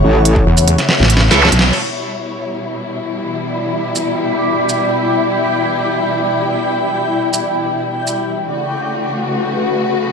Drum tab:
CC |------------------------------------------------|x-----------------------------------------------|------------------------------------------------|------------------------------------------------|
HH |------x-----------x--x--------x-----------x-----|------------------------------------------------|------------------------------------------------|------------------------------------------------|
SH |---------------x--------------------x-----------|------------------------------------------------|---------------x--------------------x-----------|------------------------------------------------|
SD |---------------------o--o---o---o---o---o---o---|------------------------------------------------|------------------------------------------------|------------------------------------------------|
BD |---------o--------------------------------------|------------------------------------------------|------------------------------------------------|------------------------------------------------|

CC |------------------------------------------------|------------------------------------------------|
HH |------------------------------------------------|------------------------------------------------|
SH |---------------x--------------------x-----------|------------------------------------------------|
SD |------------------------------------------------|------------------------------------------------|
BD |------------------------------------------------|------------------------------------------------|